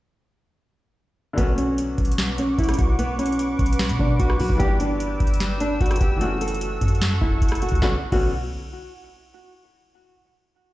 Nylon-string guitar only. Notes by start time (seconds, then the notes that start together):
1.38 B3
1.58 C#4
2.39 C#4
2.59 E4
2.78 F#4
2.99 B3
3.19 C#4
4.00 D4
4.19 F#4
4.40 F#4
4.59 G4
4.80 D4
5.61 D4
5.81 F#4
6.01 G4
6.21 F#4
6.41 A4
7.21 E4
7.62 F#4
7.82 F#4
8.12 F#4